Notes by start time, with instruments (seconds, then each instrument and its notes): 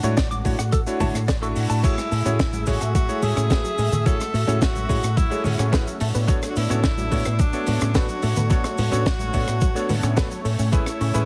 Already playing: analog synth pad F#4
0.03 fingered electric bass A2, electric grand piano A3 D4 E4 F#4 C#5, closed hi-hat, high conga, cabasa, shaker
0.17 fingered electric bass A1, clean electric guitar D5, kick, snare, closed hi-hat, cabasa, shaker
0.31 clean electric guitar D6, closed hi-hat, high conga, cabasa, shaker
0.45 fingered electric bass A2, electric grand piano A3 D4 E4 F#4 C#5, kick, open hi-hat, cabasa
0.59 fingered electric bass A2, clean electric guitar F#5, cross-stick, closed hi-hat, cabasa, shaker
0.72 fingered electric bass A1, clean electric guitar A4, kick, closed hi-hat, cabasa, shaker
0.86 electric grand piano A3 D4 E4 F#4 C#5, closed hi-hat, cabasa, shaker
1.00 fingered electric bass A2, electric grand piano A3 D4 E4 F#4 C#5, clean electric guitar A5, kick, open hi-hat, high conga, low conga, cabasa
1.14 fingered electric bass A2, cross-stick, closed hi-hat, cabasa, shaker
1.28 fingered electric bass A1, clean electric guitar D5, kick, snare, closed hi-hat, cabasa, shaker
1.42 electric grand piano A3 D4 E4 F#4 C#6, clean electric guitar A4, closed hi-hat, cabasa, shaker
1.56 fingered electric bass A2, open hi-hat, cabasa
1.69 fingered electric bass A2, clean electric guitar A5, open hi-hat, cabasa, shaker
1.83 fingered electric bass A1, synth arpeggio sound F#3, analog synth pad A3 G#4 E5, electric grand piano A3 E4 F#4 G#4 C#5, tenor saxophone E4, kick, closed hi-hat, crash, cabasa, shaker
1.97 synth arpeggio sound G#3, cross-stick, closed hi-hat, cabasa, shaker
2.12 fingered electric bass A2, synth arpeggio sound A3, open hi-hat, cabasa
2.25 fingered electric bass A2, electric grand piano A3 E4 F#4 G#4 C#5, synth arpeggio sound C#4, closed hi-hat, high conga, cabasa, shaker
2.39 fingered electric bass A1, synth arpeggio sound E4, kick, snare, closed hi-hat, cabasa, shaker
2.52 synth arpeggio sound F#3, closed hi-hat, high conga, cabasa, shaker
2.66 fingered electric bass A2, synth arpeggio sound G#3, electric grand piano A3 E4 F#4 G#4 C#5, tenor saxophone F#4, kick, open hi-hat, cabasa
2.81 fingered electric bass A2, synth arpeggio sound A3, cross-stick, closed hi-hat, cabasa, shaker
2.95 fingered electric bass A1, synth arpeggio sound F#3, tenor saxophone F#4, kick, closed hi-hat, cabasa, shaker
3.08 synth arpeggio sound G#3, electric grand piano A3 E4 F#4 G#4 C#5, closed hi-hat, cabasa, shaker
3.22 fingered electric bass A2, synth arpeggio sound A3, tenor saxophone G#4, open hi-hat, high conga, cabasa
3.36 fingered electric bass A2, synth arpeggio sound C#4, cross-stick, closed hi-hat, cabasa, shaker
3.50 fingered electric bass A1, electric grand piano A3 E4 F#4 G#4 B4, synth arpeggio sound E4, kick, snare, closed hi-hat, cabasa, shaker
3.64 synth arpeggio sound F#3, closed hi-hat, cabasa, shaker
3.78 fingered electric bass A2, synth arpeggio sound G#3, open hi-hat, cabasa
3.92 fingered electric bass A2, synth arpeggio sound A3, closed hi-hat, low conga, cabasa, shaker
4.05 fingered electric bass A1, synth arpeggio sound F#3, electric grand piano A3 E4 F#4 G#4 C#5, analog synth pad F#4, tenor saxophone A4, kick, closed hi-hat, cabasa, shaker
4.20 synth arpeggio sound G#3, cross-stick, closed hi-hat, cabasa, shaker
4.34 fingered electric bass A2, synth arpeggio sound A3, open hi-hat, cabasa
4.47 fingered electric bass A2, electric grand piano A3 E4 F#4 G#4 C#5, synth arpeggio sound C#4, closed hi-hat, high conga, cabasa, shaker
4.62 fingered electric bass A1, synth arpeggio sound E4, tenor saxophone F#4, kick, snare, closed hi-hat, cabasa, shaker
4.75 synth arpeggio sound F#3, closed hi-hat, high conga, cabasa, shaker
4.89 fingered electric bass A2, synth arpeggio sound G#3, electric grand piano A3 E4 F#4 G#4 C#5, kick, open hi-hat, cabasa
5.03 fingered electric bass A2, synth arpeggio sound A3, cross-stick, closed hi-hat, cabasa, shaker
5.17 fingered electric bass A1, synth arpeggio sound F#3, tenor saxophone E4, kick, closed hi-hat, cabasa, shaker
5.30 synth arpeggio sound G#3, electric grand piano A3 E4 F#4 G#4 C#5, closed hi-hat, cabasa, shaker
5.44 fingered electric bass A2, synth arpeggio sound A3, tenor saxophone C#4, open hi-hat, high conga, low conga, cabasa
5.59 fingered electric bass A2, synth arpeggio sound C#4, cross-stick, closed hi-hat, cabasa, shaker
5.72 fingered electric bass A1, electric grand piano A3 E4 F#4 G#4 B4, synth arpeggio sound E4, kick, snare, closed hi-hat, cabasa, shaker
5.87 synth arpeggio sound F#3, closed hi-hat, cabasa, shaker
6.00 fingered electric bass A2, synth arpeggio sound A3, analog synth pad D4 C#5, open hi-hat, cabasa
6.14 fingered electric bass A2, synth arpeggio sound B3, open hi-hat, cabasa, shaker
6.27 fingered electric bass A1, synth arpeggio sound F#3, electric grand piano B3 D4 F#4 A4 C#5, kick, closed hi-hat, cabasa, shaker
6.42 synth arpeggio sound A3, cross-stick, closed hi-hat, cabasa, shaker
6.49 tenor saxophone F#4
6.56 fingered electric bass A2, synth arpeggio sound B3, tenor saxophone E4, open hi-hat, cabasa
6.69 fingered electric bass A2, electric grand piano B3 D4 F#4 A4 C#5, synth arpeggio sound C#4, closed hi-hat, high conga, cabasa, shaker
6.84 fingered electric bass A1, synth arpeggio sound D4, kick, snare, closed hi-hat, cabasa, shaker
6.98 synth arpeggio sound F#3, closed hi-hat, high conga, cabasa, shaker
7.11 fingered electric bass A2, synth arpeggio sound A3, electric grand piano B3 D4 F#4 A4 C#5, kick, open hi-hat, cabasa
7.25 fingered electric bass A2, synth arpeggio sound B3, cross-stick, closed hi-hat, cabasa, shaker
7.38 fingered electric bass A1, synth arpeggio sound F#3, tenor saxophone D4, kick, closed hi-hat, cabasa, shaker
7.53 synth arpeggio sound A3, electric grand piano B3 D4 F#4 A4 C#5, closed hi-hat, cabasa, shaker
7.66 fingered electric bass A2, synth arpeggio sound B3, open hi-hat, high conga, cabasa
7.81 fingered electric bass A2, synth arpeggio sound C#4, cross-stick, closed hi-hat, cabasa, shaker
7.94 fingered electric bass A1, electric grand piano B3 D4 F#4 A4 B4, synth arpeggio sound D4, tenor saxophone F#4, kick, snare, closed hi-hat, cabasa, shaker
8.08 synth arpeggio sound F#3, closed hi-hat, cabasa, shaker
8.22 fingered electric bass A2, synth arpeggio sound A3, open hi-hat, cabasa
8.36 fingered electric bass A2, synth arpeggio sound B3, closed hi-hat, low conga, cabasa, shaker
8.50 fingered electric bass A1, synth arpeggio sound F#3, electric grand piano B3 D4 F#4 A4 C#5, tenor saxophone F#4, kick, closed hi-hat, cabasa, shaker
8.64 synth arpeggio sound A3, cross-stick, closed hi-hat, cabasa, shaker
8.78 fingered electric bass A2, synth arpeggio sound B3, open hi-hat, high conga, cabasa
8.91 fingered electric bass A2, electric grand piano B3 D4 F#4 A4 C#5, synth arpeggio sound C#4, closed hi-hat, high conga, cabasa, shaker
9.06 fingered electric bass A1, synth arpeggio sound D4, kick, snare, closed hi-hat, cabasa, shaker
9.19 synth arpeggio sound F#3, closed hi-hat, high conga, cabasa, shaker
9.33 fingered electric bass A2, synth arpeggio sound A3, electric grand piano B3 D4 F#4 A4 C#5, kick, open hi-hat, cabasa
9.47 fingered electric bass A2, synth arpeggio sound B3, cross-stick, closed hi-hat, cabasa, shaker
9.61 fingered electric bass A1, synth arpeggio sound F#3, kick, closed hi-hat, cabasa, shaker
9.75 synth arpeggio sound A3, electric grand piano B3 D4 F#4 A4 C#5, closed hi-hat, cabasa, shaker
9.89 fingered electric bass A2, synth arpeggio sound B3, open hi-hat, high conga, low conga, cabasa
10.03 fingered electric bass A2, synth arpeggio sound C#4, cross-stick, closed hi-hat, cabasa, shaker
10.16 fingered electric bass A1, electric grand piano B3 D4 F#4 A4 B4, synth arpeggio sound D4, kick, snare, closed hi-hat, cabasa, shaker
10.31 synth arpeggio sound F#3, closed hi-hat, cabasa, shaker
10.45 fingered electric bass A2, synth arpeggio sound A3, analog synth pad G#5, open hi-hat, cabasa
10.58 fingered electric bass A2, synth arpeggio sound C#4, open hi-hat, cabasa, shaker
10.72 fingered electric bass A1, synth arpeggio sound G#3, electric grand piano A3 C#4 E4 G#4 B4, tenor saxophone E4, kick, closed hi-hat, cabasa, shaker
10.86 synth arpeggio sound A3, cross-stick, closed hi-hat, cabasa, shaker
11.01 fingered electric bass A2, synth arpeggio sound C#4, open hi-hat, cabasa
11.14 fingered electric bass A2, electric grand piano A3 C#4 E4 G#4 B4, synth arpeggio sound E4, closed hi-hat, high conga, cabasa, shaker